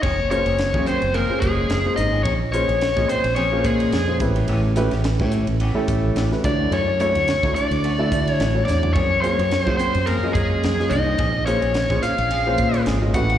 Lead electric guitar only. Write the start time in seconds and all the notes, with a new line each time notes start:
0.02 C#5
0.31 C#5
0.87 C5
1.14 A#4
1.40 G#4
1.96 D#5
2.23 C#5
2.52 C#5
3.09 C5
3.36 C#5
3.66 G#4
6.45 D5
6.73 C#5
7.01 C#5
7.55 D5
8.32 C#5
8.65 D5
8.93 C#5
9.22 C#5
9.65 C5
9.77 C5
10.06 A#4
10.33 G#4
10.90 D#5
11.46 C#5
12.02 F5
13.14 F#5